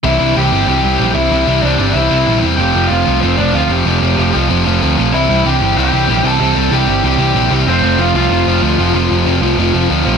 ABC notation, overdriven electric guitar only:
X:1
M:4/4
L:1/8
Q:1/4=189
K:F
V:1 name="Overdriven electric guitar"
[C,E,G,CE] [C,E,G,CE] [C,E,G,CE] [C,E,G,CE] [C,E,G,CE] [C,E,G,CE] [C,E,G,CE] [C,E,G,CE] | [C,E,G,CE] [C,E,G,CE] [C,E,G,CE] [C,E,G,CE] [C,E,G,CE] [C,E,G,CE] [C,E,G,CE] [C,E,G,CE] | [F,A,CF] [F,A,CF] [F,A,CF] [F,A,CF] [F,A,CF] [F,A,CF] [F,A,CF] [F,A,CF] | [F,A,CF] [F,A,CF] [F,A,CF] [F,A,CF] [F,A,CF] [F,A,CF] [F,A,CF] [F,A,CF] |
[C,E,G,CE] [C,E,G,CE] [C,E,G,CE] [C,E,G,CE] [C,E,G,CE] [C,E,G,CE] [C,E,G,CE] [C,E,G,CE] | [C,E,G,CE] [C,E,G,CE] [C,E,G,CE] [C,E,G,CE] [C,E,G,CE] [C,E,G,CE] [C,E,G,CE] [C,E,G,CE] | [F,A,CF] [F,A,CF] [F,A,CF] [F,A,CF] [F,A,CF] [F,A,CF] [F,A,CF] [F,A,CF] | [F,A,CF] [F,A,CF] [F,A,CF] [F,A,CF] [F,A,CF] [F,A,CF] [F,A,CF] [F,A,CF] |]